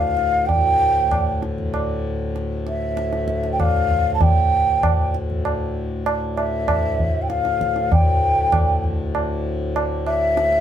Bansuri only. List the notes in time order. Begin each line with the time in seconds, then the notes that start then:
Already playing: F5
0.46 G5
2.68 E5
3.52 G5
3.60 F5
4.14 A5
4.21 G5
6.36 E5
7.22 G5
7.28 F5
7.92 G5
10.06 E5